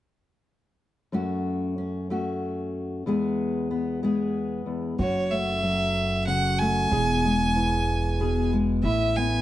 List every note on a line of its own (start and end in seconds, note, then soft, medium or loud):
1.12 3.02 F#2 soft
1.12 2.09 A3 soft
1.12 1.77 C#4 soft
1.12 2.10 F#4 soft
1.78 2.10 C#4 soft
2.10 3.02 A3 soft
2.10 3.03 C#4 soft
2.10 3.03 F#4 soft
3.06 4.65 E2 medium
3.06 4.02 G#3 soft
3.06 3.70 B3 soft
3.06 4.03 G#4 soft
3.71 4.03 B3 soft
4.03 4.95 G#3 soft
4.03 4.99 B3 soft
4.03 4.96 G#4 soft
4.66 4.98 E2 soft
4.99 6.88 F#1 medium
4.99 6.88 F#2 medium
4.99 6.27 F#4 medium
4.99 5.32 C#5 medium
5.31 6.59 A3 soft
5.31 6.26 E5 medium
5.63 6.88 F#3 soft
6.27 6.88 C#3 soft
6.27 6.88 F#4 medium
6.27 6.61 F#5 medium
6.59 6.88 A3 soft
6.59 8.52 G#5 medium
6.91 8.80 E1 medium
6.91 8.85 E2 medium
6.91 8.20 G#4 medium
7.25 8.52 G#3 soft
7.56 8.80 E3 medium
8.20 8.80 B2 soft
8.20 8.81 G#4 medium
8.53 8.81 G#3 soft
8.83 9.42 A1 medium
8.83 9.42 A2 medium
8.83 9.42 E4 medium
8.83 9.18 E5 medium
9.17 9.42 B3 soft
9.17 9.42 G#5 medium